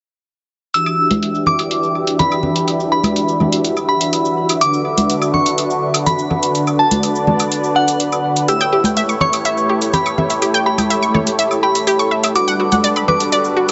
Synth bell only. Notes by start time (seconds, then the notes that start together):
0.74 E6
1.47 D6
2.19 B5
2.92 B5
3.89 B5
4.61 D6
5.34 C#6
6.06 B5
6.79 A5
7.76 F#5
8.48 E6
9.21 C#6
9.94 B5
10.66 B5
11.63 B5
12.36 D6
13.08 D6